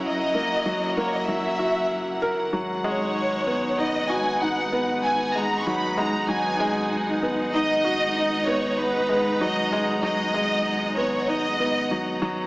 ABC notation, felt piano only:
X:1
M:4/4
L:1/8
Q:1/4=96
K:G#m
V:1 name="Felt piano"
z A, F, A, F, F z A | F, G, z B, D F D B, | z G, F, G, F, G, z B, | D F D B, z G, F, G, |
F, G, z B, D B, F, F, |]